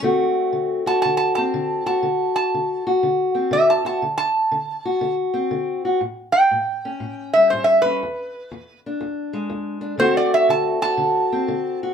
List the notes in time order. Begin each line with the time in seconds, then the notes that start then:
0.02 D3 A3 C4 F#4
0.53 D3
0.86 F#4 A5
1.02 D3 A5
1.17 A5
1.35 C4 A5
1.54 D3
1.86 F#4 A5
2.03 D3
2.36 A5
2.54 D3
2.87 F#4
3.03 D3
3.35 C4
3.51 D3 E5
3.70 A5
3.85 F#4 A5
4.02 D3
4.18 A5
4.51 D3
4.85 F#4
5.01 D3
5.34 C4
5.51 D3
5.85 F#4
6.01 A2
6.32 G5
6.51 A2
6.85 C#4
7.00 A2
7.33 G3 E5
7.50 A2 C5
7.64 E5
7.82 C#4 B4
8.03 E2
8.51 E2
8.86 D4
9.01 E2
9.33 G#3
9.50 E2
9.81 D4
9.98 D3 A3 C4 F#4 C5
10.17 D5
10.34 E5
10.49 D3 A5
10.82 F#4 A5
10.97 D3
11.32 C4
11.48 D3
11.83 F#4